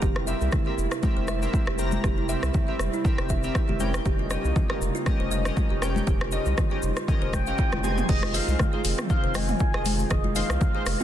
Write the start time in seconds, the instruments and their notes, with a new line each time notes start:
Already playing: analog synth pad A#3, synth keys C4 G4 A#4 A#5
0.02 analog synth bass F1, analog synth pad C3 G3 E4, kalimba G4, kick, low conga, cabasa
0.16 kalimba E4, cross-stick
0.27 synth keys C4 G4 A#4 E5, kalimba E5, cabasa
0.41 analog synth bass C2, cabasa
0.52 kalimba E4, kick, cross-stick, high conga, low conga, cabasa
0.66 synth keys C4 G4 A#4 E5, kalimba G4
0.78 analog synth bass F1, cabasa
0.91 kalimba E4, cross-stick, cabasa
1.03 synth keys C4 G4 A#4 E5, kick, high conga, cabasa
1.17 analog synth bass F1, kalimba C5
1.28 kalimba E5, cross-stick, high conga, cabasa
1.42 synth keys C4 G4 A#4 E5, cabasa
1.53 kalimba E4, kick, high conga, cabasa
1.67 analog synth bass F1, kalimba G4, cross-stick
1.78 synth keys C4 G4 A#4 A#5, kalimba C5, cabasa
1.92 high conga, cabasa
2.04 analog synth bass F1, analog synth pad C4, kalimba G4, kick, cross-stick, low conga, cabasa
2.18 kalimba E4
2.29 synth keys C4 G4 A#4 E5, kalimba E5, cabasa
2.43 analog synth bass C2, cross-stick, cabasa
2.54 kalimba E4, kick, high conga, low conga, cabasa
2.68 synth keys C4 G4 A#4 E5, kalimba G4
2.79 analog synth bass F1, cross-stick, cabasa
2.93 kalimba E4, cabasa
3.04 synth keys C4 G4 A#4 E5, kick, cabasa
3.18 analog synth bass F1, kalimba C5, cross-stick
3.29 kalimba E5, kick, cabasa
3.43 synth keys C4 G4 A#4 E5, cabasa
3.55 kalimba E4, kick, cross-stick, cabasa
3.69 analog synth bass F1, kalimba G4, high conga, low conga
3.80 synth keys C#4 G4 A#4 G5, kalimba C5, high conga, cabasa
3.94 cross-stick, cabasa
4.05 analog synth bass F1, analog synth pad C#3 A#3 D#4, kalimba G4, kick, low conga, cabasa
4.19 kalimba F4
4.30 synth keys C#4 G4 A#4 D#5, kalimba D#5, cross-stick, cabasa
4.45 analog synth bass C2, cabasa
4.56 kalimba F4, kick, high conga, low conga, cabasa
4.70 synth keys C#4 G4 A#4 D#5, kalimba G4, cross-stick
4.81 analog synth bass F1, cabasa
4.95 kalimba F4, cabasa
5.06 synth keys C#4 G4 A#4 D#5, kick, cross-stick, high conga, cabasa
5.20 analog synth bass F1, kalimba C5
5.31 kalimba D#5, high conga, cabasa
5.45 synth keys C#4 G4 A#4 D#5, cross-stick, cabasa
5.57 kalimba F4, kick, high conga, cabasa
5.70 analog synth bass F1, kalimba G4
5.82 synth keys C#4 G4 A#4 G5, kalimba C5, cross-stick, cabasa
5.96 high conga, cabasa
6.07 analog synth bass F1, kalimba G4, analog synth pad C5, kick, low conga, cabasa
6.21 kalimba F4, cross-stick
6.32 synth keys C#4 G4 A#4 D#5, kalimba D#5, cabasa
6.46 analog synth bass C2, cabasa
6.57 kalimba F4, kick, cross-stick, high conga, low conga, cabasa
6.71 synth keys C#4 G4 A#4 D#5, kalimba G4
6.82 analog synth bass F1, cabasa
6.97 kalimba F4, cross-stick, cabasa
7.08 synth keys C#4 G4 A#4 D#5, kick, low conga, cabasa
7.22 analog synth bass F1, kalimba C5
7.33 kalimba C5, analog synth lead G5, kick, cross-stick, high conga, cabasa
7.46 synth keys C#4 G4 A#4 D#5, kalimba F5, cabasa
7.58 kalimba F4, kick, high tom, cabasa
7.72 analog synth bass F1, kalimba F4, cross-stick, high tom, high conga, low conga
7.83 synth keys D#4 G#4 C5 G#5, kalimba G4, high conga, cabasa
7.98 mid tom, cabasa
8.09 analog synth bass F1, analog synth pad D#3 G#3 C4 F4, kalimba G#4, analog synth lead D#5, kick, crash, high conga, low conga, cabasa
8.23 kalimba F4, cross-stick, high conga
8.34 synth keys G#3 D#4 F4 C5, kalimba D#5, analog synth lead F5, open hi-hat, cabasa
8.48 analog synth bass C2, cabasa
8.59 kalimba F4, kick, cross-stick, high conga, low conga, cabasa
8.73 synth keys G#3 D#4 F4 C5, kalimba G#4
8.84 analog synth bass F1, open hi-hat, cabasa
8.98 kalimba F4, cross-stick, mid tom, cabasa
9.09 synth keys G#3 D#4 F4 C5, analog synth lead F5, kick, cabasa
9.24 analog synth bass F1, kalimba C5
9.34 kalimba D#5, analog synth lead G#5, cross-stick, open hi-hat, high conga, cabasa
9.48 mid tom, cabasa
9.59 kalimba F4, kick, cabasa
9.74 analog synth bass F1, synth keys G#3 D#4 F4 D#5, kalimba G#4, cross-stick
9.85 kalimba C5, open hi-hat, high conga, cabasa
9.99 cabasa
10.10 analog synth bass F1, analog synth pad A#3, kalimba G#4, analog synth lead D#5, kick, cross-stick, high conga, low conga, cabasa
10.24 kalimba F4, high conga
10.35 synth keys G#3 D#4 F4 C5, kalimba D#5, analog synth lead F5, open hi-hat, cabasa
10.50 analog synth bass C2, cross-stick, cabasa
10.61 kalimba F4, analog synth lead F5, kick, high conga, low conga, cabasa
10.75 synth keys G#3 D#4 F4 C5, kalimba G#4
10.86 analog synth bass F1, cross-stick, open hi-hat, cabasa
11.00 kalimba F4, mid tom, cabasa